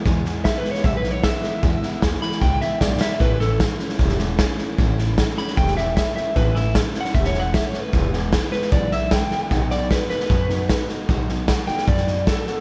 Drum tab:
HH |----p-------p---|----p-------p---|----p-------p---|----p-------p---|
SD |o-o-o-ooo-o-o-o-|o-o-o-ooo-o-o-o-|o-o-o-ooooo-o-o-|o-o-o-ooooo-o-o-|
BD |o---o---o---o---|o---o---o---o---|o---o---o---o---|o---o---o---o---|

HH |----p-------p---|----p-------p---|----p-------p---|----p-------p---|
SD |o-o-o-ooooo-o-o-|o-o-o-ooo-o-o-o-|o-o-o-ooo-o-o-o-|o-o-o-ooooo-o-o-|
BD |o---o---o---o---|o---o---o---o---|o---o---o---o---|o---o---o---o---|